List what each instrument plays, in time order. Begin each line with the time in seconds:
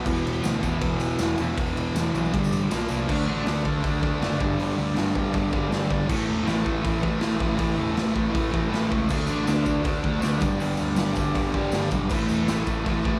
Already playing: distorted electric guitar B3
0.05 picked electric bass E1, distorted electric guitar E2 B2 E3, kick, tambourine, crash
0.15 tambourine
0.26 picked electric bass E1, ride
0.33 tambourine
0.42 picked electric bass D2, distorted electric guitar E2 B2 E3, snare, ride, tambourine
0.62 picked electric bass E1, distorted electric guitar E2 B2 E3, kick, ride, tambourine
0.80 picked electric bass E1, distorted electric guitar E2 B2 E3, kick, ride, tambourine
1.00 picked electric bass E1, ride, tambourine
1.10 tambourine
1.19 picked electric bass E1, distorted electric guitar E2 B2 E3, snare, ride, tambourine
1.38 picked electric bass E1, distorted electric guitar E2 B2 E3, ride, tambourine
1.57 picked electric bass E1, distorted electric guitar E2 B2 E3, kick, ride, tambourine
1.67 tambourine
1.76 picked electric bass E1, ride, tambourine
1.95 picked electric bass E1, distorted electric guitar E2 B2 E3, snare, ride, tambourine
2.14 picked electric bass B1, distorted electric guitar E2 B2 E3, ride, tambourine
2.25 tambourine
2.33 picked electric bass G1, distorted electric guitar G2 D3 G3, kick, ride, tambourine
2.44 tambourine
2.52 picked electric bass A1, ride, tambourine
2.61 tambourine
2.70 picked electric bass A#1, distorted electric guitar A#2 F3 A#3, snare, ride, tambourine
2.81 tambourine
2.88 picked electric bass C2, distorted electric guitar A#2 F3 A#3, ride, tambourine
2.98 tambourine
3.08 picked electric bass D2, distorted electric guitar D3 A3 D4, kick, crash
3.25 picked electric bass A1, distorted electric guitar D4
3.30 distorted electric guitar A3
3.44 picked electric bass D2, distorted electric guitar D3 A3 D4, snare, open hi-hat
3.64 picked electric bass D2, distorted electric guitar A3 D4, kick
3.81 picked electric bass D2, distorted electric guitar D3 A3 D4, kick, open hi-hat
4.01 picked electric bass D2, distorted electric guitar D3 A3 D4, kick
4.20 picked electric bass F#1, distorted electric guitar D3 A3 D4, snare, open hi-hat
4.39 picked electric bass G1, distorted electric guitar G2 D3 G3, kick
4.57 picked electric bass G1, distorted electric guitar G2 D3 G3, open hi-hat
4.77 picked electric bass D2, distorted electric guitar D3 G3
4.95 picked electric bass G1, distorted electric guitar G2 D3 G3, snare, open hi-hat
5.13 picked electric bass G1, distorted electric guitar D3 G3, kick
5.33 picked electric bass G1, distorted electric guitar G2 D3 G3, kick, open hi-hat
5.51 picked electric bass G1, distorted electric guitar G2 D3 G3, kick
5.69 picked electric bass G1, distorted electric guitar G2 D3 G3, snare, open hi-hat
5.88 picked electric bass G1, distorted electric guitar D3 G3, kick
6.07 picked electric bass A1, distorted electric guitar A2 E3 A3, kick, crash
6.26 picked electric bass E1, distorted electric guitar E3 A3
6.44 picked electric bass A1, distorted electric guitar A2 E3 A3, snare, open hi-hat
6.63 picked electric bass A1, distorted electric guitar E3 A3, kick
6.82 picked electric bass A1, distorted electric guitar A2 E3, kick, open hi-hat
6.86 distorted electric guitar A3
7.00 picked electric bass A1, distorted electric guitar A2 E3 A3, kick
7.19 distorted electric guitar A2 E3 A3, snare, open hi-hat
7.23 picked electric bass A1
7.38 picked electric bass A1, distorted electric guitar E3 A3, kick
7.55 distorted electric guitar A2 E3 A3, kick, open hi-hat
7.60 picked electric bass A1
7.75 distorted electric guitar E3 A3
7.79 picked electric bass E1
7.93 picked electric bass A1, distorted electric guitar A2 E3 A3, open hi-hat
7.98 snare
8.12 picked electric bass A1, distorted electric guitar E3 A3, kick
8.31 distorted electric guitar A2 E3 A3, kick, open hi-hat
8.35 picked electric bass A1
8.49 distorted electric guitar A2 E3 A3
8.54 picked electric bass A1, kick
8.68 picked electric bass A1, distorted electric guitar A2 E3 A3
8.73 snare, open hi-hat
8.89 picked electric bass C#2, distorted electric guitar E3 A3, kick
9.09 picked electric bass D2, distorted electric guitar D3 A3 D4, kick, crash, tambourine
9.27 picked electric bass A1, distorted electric guitar A3 D4, tambourine
9.45 picked electric bass D2, distorted electric guitar D3 A3 D4, snare, open hi-hat, tambourine
9.66 picked electric bass D2, distorted electric guitar A3 D4, kick, tambourine
9.82 picked electric bass D2, distorted electric guitar D3 A3 D4, kick, open hi-hat, tambourine
10.02 picked electric bass D2, distorted electric guitar D3 A3 D4, kick
10.19 distorted electric guitar D3 A3 D4, open hi-hat, tambourine
10.23 picked electric bass D2, snare
10.38 distorted electric guitar G2 D3 G3, kick, tambourine
10.43 picked electric bass G1
10.57 picked electric bass G1, distorted electric guitar G2 D3 G3, tambourine
10.61 open hi-hat
10.76 picked electric bass D2, distorted electric guitar D3 G3, tambourine
10.95 picked electric bass G1, distorted electric guitar G2 D3 G3, snare, open hi-hat, tambourine
11.14 picked electric bass G1, distorted electric guitar D3 G3, kick, tambourine
11.34 picked electric bass G1, distorted electric guitar G2 D3 G3, kick, open hi-hat, tambourine
11.53 picked electric bass G1, distorted electric guitar G2 D3 G3, kick
11.72 picked electric bass G1, distorted electric guitar G2 D3 G3, snare, open hi-hat, tambourine
11.90 picked electric bass B1, distorted electric guitar D3 G3, kick, tambourine
12.09 picked electric bass A1, distorted electric guitar A2 E3 A3, kick, tambourine, crash
12.28 picked electric bass E1, distorted electric guitar E3 A3, tambourine
12.47 picked electric bass A1, distorted electric guitar A2 E3 A3, snare, open hi-hat, tambourine
12.65 picked electric bass A1, distorted electric guitar E3 A3, kick, tambourine
12.84 picked electric bass A1, distorted electric guitar A2 E3 A3, kick, open hi-hat, tambourine
13.03 picked electric bass A1, distorted electric guitar A2 E3 A3, kick